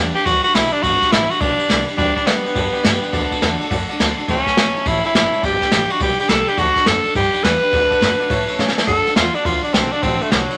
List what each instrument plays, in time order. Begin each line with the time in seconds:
Already playing: upright bass E2, steel-string acoustic guitar G3 D4 G4 B4
0.14 steel-string acoustic guitar D4 G4 B4, tenor saxophone G4, ride
0.25 upright bass D2, steel-string acoustic guitar G3 D4 G4 B4, tenor saxophone F#4, kick, ride
0.44 steel-string acoustic guitar D4 G4 B4, tenor saxophone F#4, muted upright bass stroke, ride
0.54 upright bass B1, steel-string acoustic guitar G3 D4 G4 B4, tenor saxophone E4, snare, ride
0.72 tenor saxophone D4, steel-string acoustic guitar D4 G4 B4, ride
0.82 upright bass G1, steel-string acoustic guitar G3 D4 G4 B4, tenor saxophone F#4, kick, ride
1.01 steel-string acoustic guitar D4 G4 B4, muted upright bass stroke, kick, snare, ride
1.11 upright bass A1, steel-string acoustic guitar G3 D4 G4 B4, tenor saxophone E4, snare, ride
1.29 steel-string acoustic guitar D4 G4 B4, tenor saxophone F#4, muted upright bass stroke, ride
1.39 upright bass B1, steel-string acoustic guitar G3 D4 G4 B4, tenor saxophone D4, kick, ride
1.57 steel-string acoustic guitar D4 G4 B4, muted upright bass stroke, ride
1.68 upright bass C2, steel-string acoustic guitar G3 D4 G4 B4, snare, ride
1.86 steel-string acoustic guitar D4 G4 B4, ride
1.96 upright bass D2, steel-string acoustic guitar G3 D4 G4 B4, tenor saxophone D4, upright piano D5 G5 B5, kick, ride
2.15 tenor saxophone D4, steel-string acoustic guitar D4 G4 B4, upright piano D5 G5 B5, kick, ride
2.26 upright bass E2, steel-string acoustic guitar G3 D4 G4 B4, tenor saxophone B3, upright piano B5, snare, ride
2.44 steel-string acoustic guitar D4 G4 B4, upright piano D5 G5 B5, muted upright bass stroke, ride
2.54 upright bass F#2, steel-string acoustic guitar G3 D4 G4 B4, upright piano D5 G5 A5, kick, ride
2.72 steel-string acoustic guitar D4 G4 B4, upright piano D5 G5 B5, muted upright bass stroke, ride
2.82 upright bass G2, steel-string acoustic guitar G3 D4 G4 B4, upright piano D5 G5, snare, ride
3.01 steel-string acoustic guitar D4 G4 B4, upright piano D5 G5 B5, ride
3.12 upright bass D2, steel-string acoustic guitar D3 A3 D4 F#4 A4, upright piano D5 F#5 A5, kick, ride
3.30 steel-string acoustic guitar F#4 A4, upright piano D5 F#5 A5, kick, ride
3.35 steel-string acoustic guitar D4
3.41 upright bass E2, steel-string acoustic guitar D3 A3 D4 F#4 A4, upright piano D5 F#5, snare, ride
3.59 steel-string acoustic guitar F#4 A4, upright piano D5 F#5 A5, muted upright bass stroke, ride
3.64 steel-string acoustic guitar D4
3.70 upright bass F#2, steel-string acoustic guitar A3 D4 F#4, upright piano D5 F#5 A5, kick, ride
3.74 steel-string acoustic guitar A4
3.89 steel-string acoustic guitar F#4 A4, upright piano D5 F#5 A5, muted upright bass stroke, ride
3.93 steel-string acoustic guitar D4
3.98 upright bass D2, steel-string acoustic guitar D3 A3 D4 F#4 A4, upright piano D5 F#5 A5, snare, ride
4.17 steel-string acoustic guitar D4 F#4 A4, upright piano D5 F#5 A5, muted upright bass stroke, ride
4.27 upright bass C#2, steel-string acoustic guitar A2 E3 A3 C#4 E4 A4, tenor saxophone C#4, upright piano C#5 E5 A5, kick, ride
4.46 steel-string acoustic guitar C#4 E4 A4, upright piano C#5 F#5, muted upright bass stroke, kick, snare, ride
4.50 steel-string acoustic guitar A3
4.56 upright bass B1, steel-string acoustic guitar A2 E3 A3 C#4 E4 A4, upright piano C#5 E5, snare, ride
4.74 steel-string acoustic guitar C#4 E4 A4, upright piano C#5 E5 A5, ride
4.78 steel-string acoustic guitar A3
4.85 upright bass A1, steel-string acoustic guitar A3 C#4 E4 A4, tenor saxophone E4, upright piano C#5 E5 A5, kick, ride
5.03 steel-string acoustic guitar C#4 E4 A4, tenor saxophone E4, upright piano C#5 E5 G5, ride
5.08 steel-string acoustic guitar A3
5.14 upright bass F#1, steel-string acoustic guitar A2 E3 A3 C#4 E4 A4, tenor saxophone E4, upright piano A5, snare, ride
5.31 steel-string acoustic guitar C#4 E4 A4, upright piano C#5 E5 A5, muted upright bass stroke, ride
5.35 steel-string acoustic guitar A3
5.41 upright bass G1, steel-string acoustic guitar G3 D4 G4 B4, tenor saxophone G4, upright piano D5 G5 B5, kick, ride
5.60 steel-string acoustic guitar D4 G4 B4, upright piano D5 G5 B5, muted upright bass stroke, kick, snare, ride
5.71 upright bass A1, steel-string acoustic guitar G3 D4 G4 B4, tenor saxophone G4, upright piano D5 B5, snare, ride
5.89 steel-string acoustic guitar D4 G4 B4, tenor saxophone F#4, upright piano D5 G5 B5, ride
6.00 upright bass B1, steel-string acoustic guitar G3 D4 G4 B4, tenor saxophone G4, upright piano D5 G5 B5, kick, ride
6.18 steel-string acoustic guitar D4 G4 B4, tenor saxophone G4, upright piano D5 G5 B5, muted upright bass stroke, ride
6.29 upright bass C2, steel-string acoustic guitar G3 D4 G4 B4, tenor saxophone A4, upright piano D5 G5 B5, snare, ride
6.47 steel-string acoustic guitar D4 G4 B4, tenor saxophone G4, upright piano D5 G5 B5, muted upright bass stroke, ride
6.57 upright bass D2, steel-string acoustic guitar D3 A3 D4 F#4 A4, tenor saxophone F#4, upright piano D5 F#5 A5, kick, ride
6.75 steel-string acoustic guitar D4 F#4 A4, upright piano D5 F#5 A5, muted upright bass stroke, kick, snare, ride
6.85 upright bass F#2, steel-string acoustic guitar D3 A3 D4 F#4 A4, tenor saxophone A4, upright piano A5, snare, ride
7.04 steel-string acoustic guitar D4 F#4 A4, upright piano D5 F#5 A5, ride
7.14 upright bass G2, steel-string acoustic guitar G3 D4 G4 B4, tenor saxophone G4, upright piano D5 G5 B5, kick, ride
7.33 steel-string acoustic guitar D4 G4 B4, upright piano D5 G5 B5, muted upright bass stroke, ride
7.42 upright bass E2, steel-string acoustic guitar G3 D4 G4 B4, tenor saxophone B4, upright piano D5 G5 B5, snare, ride
7.60 steel-string acoustic guitar D4 G4 B4, upright piano D5 G5 B5, ride
7.71 upright bass D2, steel-string acoustic guitar D3 A3 D4 F#4 A4, upright piano D5 F#5 A5, kick, ride
7.90 steel-string acoustic guitar D4 F#4 A4, upright piano D5 F#5 A5, kick, ride
8.00 upright bass F#2, steel-string acoustic guitar D3 A3 D4 F#4 A4, snare, ride
8.19 steel-string acoustic guitar D4 F#4 A4, upright piano D5 F#5 A5, ride
8.29 upright bass A2, steel-string acoustic guitar A3 C#4 E4 A4, upright piano C#5 E5 A5, kick, ride
8.47 steel-string acoustic guitar C#4 E4 A4, upright piano C#5 E5 A5, muted upright bass stroke, ride
8.52 steel-string acoustic guitar A3
8.58 steel-string acoustic guitar A2 E3 A3 C#4 E4 A4, upright bass C#3, upright piano C#5 E5 A5, snare
8.68 snare
8.76 steel-string acoustic guitar C#4 E4 A4, upright piano C#5 E5 A5, muted upright bass stroke, snare
8.80 steel-string acoustic guitar A3
8.86 upright bass F#2, steel-string acoustic guitar D3 A3 D4 F#4 A4, tenor saxophone A4, upright piano D5 F#5 A5, kick, ride
9.05 steel-string acoustic guitar D4 F#4 A4, upright piano D5 F#5 A5, snare, ride
9.15 upright bass E2, steel-string acoustic guitar D3 A3 D4 F#4 A4, tenor saxophone F4, upright piano D5 F#5 C6, snare, ride
9.34 tenor saxophone D4, steel-string acoustic guitar D4 F#4 A4, upright piano D5 F#5 A5, ride
9.44 upright bass D2, steel-string acoustic guitar A3 D4 F#4 A4, tenor saxophone F4, upright piano D5 F#5 C6, kick, ride
9.62 tenor saxophone D4, steel-string acoustic guitar F#4 A4, upright piano D5 F#5 A5, muted upright bass stroke, ride
9.67 steel-string acoustic guitar D4
9.73 upright bass B1, steel-string acoustic guitar D3 A3 D4 F#4 A4, tenor saxophone C4, upright piano D5 F#5 A5, snare, ride
9.91 tenor saxophone D4, steel-string acoustic guitar D4 F#4 A4, upright piano D5 F#5 A5, ride
10.02 upright bass A1, steel-string acoustic guitar D3 A3 D4 F#4 A4, tenor saxophone C4, upright piano D5 F#5 A5, kick, ride
10.19 tenor saxophone A3, steel-string acoustic guitar D4 F#4 A4, upright piano D5 F#5 C6, ride
10.30 upright bass C2, steel-string acoustic guitar D3 A3 D4 F#4 A4, tenor saxophone F#3, upright piano D5 F#5 A5, snare, ride
10.48 steel-string acoustic guitar D4 F#4 A4, upright piano D5 F#5 B5, ride